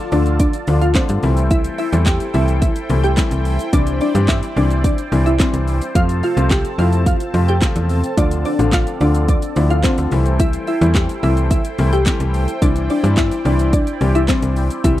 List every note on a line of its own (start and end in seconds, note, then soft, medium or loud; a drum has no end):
0.00 1.21 F4 medium
0.00 1.21 A4 medium
0.00 1.21 D5 medium
0.00 1.21 A5 medium
0.12 0.49 D2 medium
0.12 0.49 D3 medium
0.12 0.49 F3 medium
0.12 0.49 A3 medium
0.12 0.50 D4 medium
0.12 0.22 D4 medium
0.12 0.50 F4 medium
0.12 0.22 D5 medium
0.12 open hi-hat medium
0.12 shaker medium
0.26 closed hi-hat medium
0.26 shaker medium
0.40 0.50 D4 medium
0.40 0.49 D5 medium
0.40 kick loud
0.40 closed hi-hat medium
0.40 shaker medium
0.53 closed hi-hat medium
0.53 shaker medium
0.67 0.95 D2 loud
0.67 0.86 D3 medium
0.67 0.86 F3 medium
0.67 0.86 A3 medium
0.67 0.86 D4 medium
0.67 0.87 F4 medium
0.67 open hi-hat medium
0.67 shaker medium
0.81 0.91 F4 medium
0.81 0.91 F5 medium
0.81 closed hi-hat soft
0.81 shaker medium
0.94 1.23 D3 medium
0.94 1.23 F3 medium
0.94 1.22 A3 medium
0.94 1.35 C4 medium
0.94 1.23 D4 medium
0.94 1.23 F4 medium
0.94 1.35 C5 medium
0.94 kick loud
0.94 snare loud
0.94 clap loud
0.94 closed hi-hat medium
0.94 shaker medium
1.09 1.18 G2 medium
1.09 closed hi-hat medium
1.09 shaker medium
1.23 1.69 C2 loud
1.23 1.79 E3 medium
1.23 1.79 G3 medium
1.23 1.79 A3 medium
1.23 1.79 C4 medium
1.23 5.91 E4 medium
1.23 1.79 E4 medium
1.23 3.71 A4 medium
1.23 8.14 C5 medium
1.23 5.91 G5 medium
1.23 open hi-hat medium
1.23 shaker medium
1.37 closed hi-hat medium
1.37 shaker medium
1.51 1.70 E4 medium
1.51 1.70 E5 loud
1.51 kick loud
1.51 closed hi-hat medium
1.51 shaker medium
1.64 closed hi-hat medium
1.64 shaker medium
1.78 1.98 E4 medium
1.78 1.97 E5 medium
1.78 open hi-hat medium
1.78 shaker medium
1.92 2.20 E2 medium
1.92 2.21 E3 medium
1.92 2.21 G3 medium
1.92 2.21 A3 medium
1.92 2.21 C4 medium
1.92 2.21 E4 medium
1.92 closed hi-hat medium
1.92 shaker medium
2.06 2.25 G4 medium
2.06 2.25 G5 medium
2.06 kick loud
2.06 snare medium
2.06 clap loud
2.06 closed hi-hat medium
2.06 shaker medium
2.20 closed hi-hat medium
2.20 shaker medium
2.34 2.71 C2 loud
2.34 2.72 E3 medium
2.34 2.72 G3 medium
2.34 2.72 A3 medium
2.34 2.72 C4 medium
2.34 2.44 E4 medium
2.34 2.72 E4 medium
2.34 2.43 E5 medium
2.34 open hi-hat medium
2.34 shaker medium
2.48 closed hi-hat medium
2.48 shaker medium
2.62 2.72 E4 medium
2.62 2.71 E5 medium
2.62 kick loud
2.62 closed hi-hat medium
2.62 shaker medium
2.76 closed hi-hat medium
2.76 shaker medium
2.90 3.17 C2 loud
2.90 3.09 E3 medium
2.90 3.09 G3 medium
2.90 3.09 A3 medium
2.90 3.09 C4 medium
2.90 3.09 E4 medium
2.90 open hi-hat medium
2.90 shaker medium
3.04 3.13 G4 medium
3.04 3.13 G5 medium
3.04 closed hi-hat soft
3.04 shaker medium
3.17 3.55 E3 medium
3.17 3.55 G3 medium
3.17 3.55 A3 medium
3.17 3.55 C4 medium
3.17 3.55 E4 medium
3.17 kick loud
3.17 snare loud
3.17 clap loud
3.17 closed hi-hat medium
3.17 shaker medium
3.31 3.59 C2 medium
3.31 closed hi-hat medium
3.31 shaker medium
3.45 open hi-hat medium
3.45 shaker medium
3.59 closed hi-hat medium
3.59 shaker medium
3.73 4.00 C2 loud
3.73 4.01 E3 medium
3.73 4.01 G3 medium
3.73 4.01 C4 medium
3.73 4.01 D4 medium
3.73 3.92 D4 medium
3.73 4.01 E4 medium
3.73 3.92 D5 loud
3.73 5.93 D5 medium
3.73 kick loud
3.73 closed hi-hat medium
3.73 shaker medium
3.87 closed hi-hat medium
3.87 shaker medium
4.01 4.20 D4 medium
4.01 4.20 D5 medium
4.01 open hi-hat medium
4.01 shaker medium
4.15 4.42 G2 loud
4.15 4.43 E3 medium
4.15 4.43 G3 medium
4.15 4.43 C4 medium
4.15 4.43 D4 medium
4.15 4.43 G4 medium
4.15 closed hi-hat medium
4.15 shaker medium
4.28 4.48 E4 medium
4.28 4.47 E5 medium
4.28 kick loud
4.28 snare medium
4.28 clap loud
4.28 closed hi-hat medium
4.28 shaker medium
4.43 closed hi-hat medium
4.43 shaker medium
4.57 4.93 C2 loud
4.57 4.94 E3 medium
4.57 4.94 G3 medium
4.57 4.94 C4 medium
4.57 4.94 D4 medium
4.57 4.67 D4 medium
4.57 4.94 E4 medium
4.57 4.66 D5 medium
4.57 open hi-hat medium
4.57 shaker medium
4.71 closed hi-hat medium
4.71 shaker medium
4.84 4.94 D4 medium
4.84 4.94 D5 medium
4.84 kick loud
4.84 closed hi-hat medium
4.84 shaker medium
4.98 closed hi-hat medium
4.98 shaker medium
5.12 5.39 C2 loud
5.12 5.31 E3 medium
5.12 5.31 G3 medium
5.12 5.31 C4 medium
5.12 5.31 D4 medium
5.12 5.31 E4 medium
5.12 open hi-hat medium
5.12 shaker medium
5.26 5.36 E4 medium
5.26 5.35 E5 medium
5.26 closed hi-hat soft
5.26 shaker medium
5.39 5.77 E3 medium
5.39 5.77 G3 medium
5.39 5.77 C4 medium
5.39 5.79 C4 medium
5.39 5.77 D4 medium
5.39 5.77 E4 medium
5.39 5.79 C5 medium
5.39 kick loud
5.39 snare loud
5.39 clap loud
5.39 closed hi-hat medium
5.39 shaker medium
5.54 5.81 C2 medium
5.54 closed hi-hat medium
5.54 shaker medium
5.68 open hi-hat medium
5.68 shaker medium
5.82 closed hi-hat medium
5.82 shaker medium
5.95 6.23 F2 loud
5.95 6.23 C3 medium
5.95 6.23 F3 medium
5.95 6.23 A3 medium
5.95 10.08 C4 medium
5.95 6.23 C4 medium
5.95 6.23 F4 medium
5.95 6.15 F4 medium
5.95 12.58 A4 medium
5.95 6.14 F5 loud
5.95 10.08 A5 medium
5.95 kick loud
5.95 closed hi-hat medium
5.95 shaker medium
6.09 closed hi-hat medium
6.09 shaker medium
6.23 6.43 F4 medium
6.23 6.42 F5 medium
6.23 open hi-hat medium
6.23 shaker medium
6.37 6.64 C2 medium
6.37 6.65 C3 medium
6.37 6.65 F3 medium
6.37 6.65 A3 medium
6.37 6.65 C4 medium
6.37 6.65 F4 medium
6.37 closed hi-hat medium
6.37 shaker medium
6.50 6.70 G4 medium
6.50 6.70 G5 medium
6.50 kick loud
6.50 snare medium
6.50 clap loud
6.50 closed hi-hat medium
6.50 shaker medium
6.65 closed hi-hat medium
6.65 shaker medium
6.78 7.15 F2 medium
6.78 7.16 C3 medium
6.78 7.16 F3 medium
6.78 7.16 A3 medium
6.78 7.16 C4 medium
6.78 7.16 E4 medium
6.78 6.89 F4 medium
6.78 6.88 F5 medium
6.78 open hi-hat medium
6.78 shaker medium
6.93 closed hi-hat medium
6.93 shaker medium
7.06 7.16 F4 medium
7.06 7.16 F5 medium
7.06 kick loud
7.06 closed hi-hat medium
7.06 shaker medium
7.20 closed hi-hat medium
7.20 shaker medium
7.34 7.61 F2 loud
7.34 7.53 C3 medium
7.34 7.53 F3 medium
7.34 7.53 A3 medium
7.34 7.53 C4 medium
7.34 7.53 F4 medium
7.34 open hi-hat medium
7.34 shaker medium
7.48 7.58 G4 medium
7.48 7.58 G5 medium
7.48 closed hi-hat soft
7.48 shaker medium
7.61 7.99 C3 medium
7.61 7.99 F3 medium
7.61 8.00 A3 medium
7.61 8.00 C4 medium
7.61 8.00 F4 medium
7.61 kick loud
7.61 snare loud
7.61 clap loud
7.61 closed hi-hat medium
7.61 shaker medium
7.76 8.03 E2 medium
7.76 closed hi-hat medium
7.76 shaker medium
7.89 open hi-hat medium
7.89 shaker medium
8.04 closed hi-hat medium
8.04 shaker medium
8.17 8.45 D2 loud
8.17 8.45 D3 medium
8.17 8.45 F3 medium
8.17 8.46 A3 medium
8.17 8.46 D4 medium
8.17 8.37 D4 medium
8.17 8.46 F4 medium
8.17 10.10 D5 medium
8.17 8.37 D5 loud
8.17 kick loud
8.17 closed hi-hat medium
8.17 shaker medium
8.31 closed hi-hat medium
8.31 shaker medium
8.45 8.65 D4 medium
8.45 8.64 D5 medium
8.45 open hi-hat medium
8.45 shaker medium
8.59 8.86 A1 medium
8.59 8.87 D3 medium
8.59 8.87 F3 medium
8.59 8.87 A3 medium
8.59 8.87 D4 medium
8.59 8.88 F4 medium
8.59 closed hi-hat medium
8.59 shaker medium
8.72 8.92 F4 medium
8.72 8.92 F5 medium
8.72 kick loud
8.72 snare loud
8.72 clap loud
8.72 closed hi-hat medium
8.72 shaker medium
8.87 closed hi-hat medium
8.87 shaker medium
9.01 9.37 D2 medium
9.01 9.38 D3 medium
9.01 9.38 F3 medium
9.01 9.38 A3 medium
9.01 9.38 D4 medium
9.01 9.11 D4 medium
9.01 9.39 F4 medium
9.01 9.10 D5 medium
9.01 open hi-hat medium
9.01 shaker medium
9.14 closed hi-hat medium
9.14 shaker medium
9.28 9.39 D4 medium
9.28 9.38 D5 medium
9.28 kick loud
9.28 closed hi-hat medium
9.28 shaker medium
9.42 closed hi-hat medium
9.42 shaker medium
9.56 9.84 D2 loud
9.56 9.75 D3 medium
9.56 9.75 F3 medium
9.56 9.75 A3 medium
9.56 9.75 D4 medium
9.56 9.75 E4 medium
9.56 open hi-hat medium
9.56 shaker medium
9.70 9.80 F4 medium
9.70 9.80 F5 medium
9.70 closed hi-hat soft
9.70 shaker medium
9.83 10.12 D3 medium
9.83 10.12 F3 medium
9.83 10.11 A3 medium
9.83 10.24 C4 medium
9.83 10.12 D4 medium
9.83 10.12 F4 medium
9.83 10.23 C5 medium
9.83 kick loud
9.83 snare loud
9.83 clap loud
9.83 closed hi-hat medium
9.83 shaker medium
9.98 10.07 D2 medium
9.98 closed hi-hat medium
9.98 shaker medium
10.12 10.57 C2 loud
10.12 10.68 E3 medium
10.12 10.68 G3 medium
10.12 10.68 A3 medium
10.12 10.68 C4 medium
10.12 12.59 E4 medium
10.12 10.68 E4 medium
10.12 15.00 C5 medium
10.12 15.00 G5 medium
10.12 open hi-hat medium
10.12 shaker medium
10.26 closed hi-hat medium
10.26 shaker medium
10.40 10.59 E4 medium
10.40 10.58 E5 loud
10.40 kick loud
10.40 closed hi-hat medium
10.40 shaker medium
10.53 closed hi-hat medium
10.53 shaker medium
10.67 10.87 E4 medium
10.67 10.86 E5 medium
10.67 open hi-hat medium
10.67 shaker soft
10.81 11.09 E2 loud
10.81 11.09 E3 medium
10.81 11.10 G3 medium
10.81 11.10 A3 medium
10.81 11.10 C4 medium
10.81 11.10 E4 medium
10.81 closed hi-hat medium
10.81 shaker medium
10.94 11.15 G4 medium
10.94 11.14 G5 medium
10.94 kick loud
10.94 snare loud
10.94 clap loud
10.94 closed hi-hat medium
10.94 shaker medium
11.09 closed hi-hat medium
11.09 shaker medium
11.23 11.60 C2 loud
11.23 11.60 E3 medium
11.23 11.61 G3 medium
11.23 11.61 A3 medium
11.23 11.61 C4 medium
11.23 11.61 E4 medium
11.23 11.33 E4 medium
11.23 11.32 E5 medium
11.23 open hi-hat medium
11.23 shaker medium
11.37 closed hi-hat medium
11.37 shaker medium
11.51 11.61 E4 medium
11.51 11.60 E5 medium
11.51 kick loud
11.51 closed hi-hat medium
11.51 shaker medium
11.65 closed hi-hat medium
11.65 shaker medium
11.78 12.06 C2 loud
11.78 11.97 E3 medium
11.78 11.97 G3 medium
11.78 11.97 A3 medium
11.78 11.98 C4 medium
11.78 11.98 E4 medium
11.78 open hi-hat medium
11.78 shaker medium
11.93 12.02 G4 medium
11.93 12.02 G5 medium
11.93 closed hi-hat soft
11.93 shaker medium
12.06 12.44 E3 medium
12.06 12.44 G3 medium
12.06 12.44 A3 medium
12.06 12.44 C4 medium
12.06 12.44 G4 medium
12.06 kick loud
12.06 snare loud
12.06 clap loud
12.06 closed hi-hat medium
12.06 shaker medium
12.20 12.48 C2 medium
12.20 closed hi-hat medium
12.20 shaker medium
12.34 open hi-hat medium
12.34 shaker medium
12.48 closed hi-hat medium
12.48 shaker medium
12.62 12.89 C2 loud
12.62 12.90 E3 medium
12.62 12.90 G3 medium
12.62 12.90 C4 medium
12.62 12.90 D4 medium
12.62 12.81 D4 medium
12.62 15.00 E4 medium
12.62 12.90 E4 medium
12.62 14.82 D5 medium
12.62 12.81 D5 loud
12.62 kick loud
12.62 closed hi-hat medium
12.62 shaker medium
12.76 closed hi-hat medium
12.76 shaker medium
12.90 13.09 D4 medium
12.90 13.09 D5 medium
12.90 open hi-hat medium
12.90 shaker medium
13.03 13.31 G2 medium
13.03 13.32 E3 medium
13.03 13.32 G3 medium
13.03 13.32 C4 medium
13.03 13.32 D4 medium
13.03 13.32 E4 medium
13.03 closed hi-hat medium
13.03 shaker medium
13.17 13.37 E4 medium
13.17 13.37 E5 medium
13.17 kick loud
13.17 snare loud
13.17 clap loud
13.17 closed hi-hat medium
13.17 shaker medium
13.31 closed hi-hat medium
13.31 shaker medium
13.45 13.82 C2 medium
13.45 13.83 E3 medium
13.45 13.83 G3 medium
13.45 13.83 C4 medium
13.45 13.83 D4 medium
13.45 13.56 D4 medium
13.45 13.83 E4 medium
13.45 13.55 D5 medium
13.45 open hi-hat medium
13.45 shaker medium
13.59 closed hi-hat medium
13.59 shaker medium
13.73 13.83 D4 medium
13.73 13.83 D5 medium
13.73 kick loud
13.73 closed hi-hat medium
13.73 shaker medium
13.87 closed hi-hat medium
13.87 shaker medium
14.01 14.28 C2 loud
14.01 14.20 E3 medium
14.01 14.20 G3 medium
14.01 14.20 C4 medium
14.01 14.20 D4 medium
14.01 14.20 G4 medium
14.01 open hi-hat medium
14.01 shaker medium
14.15 14.25 E4 medium
14.15 14.24 E5 medium
14.15 closed hi-hat soft
14.15 shaker medium
14.28 14.66 E3 medium
14.28 14.66 G3 medium
14.28 14.66 C4 medium
14.28 14.68 C4 medium
14.28 14.66 D4 medium
14.28 14.66 E4 medium
14.28 14.68 C5 medium
14.28 kick loud
14.28 snare loud
14.28 clap loud
14.28 closed hi-hat medium
14.28 shaker medium
14.42 14.70 C2 medium
14.42 closed hi-hat medium
14.42 shaker medium
14.56 open hi-hat medium
14.56 shaker medium
14.70 closed hi-hat medium
14.70 shaker medium
14.84 15.00 C2 loud
14.84 15.00 E3 medium
14.84 15.00 G3 medium
14.84 15.00 C4 medium
14.84 15.00 D4 medium
14.84 15.00 E4 medium
14.84 15.00 G4 medium
14.84 15.00 E5 loud
14.84 15.00 E5 medium
14.84 kick loud
14.84 closed hi-hat medium
14.84 shaker medium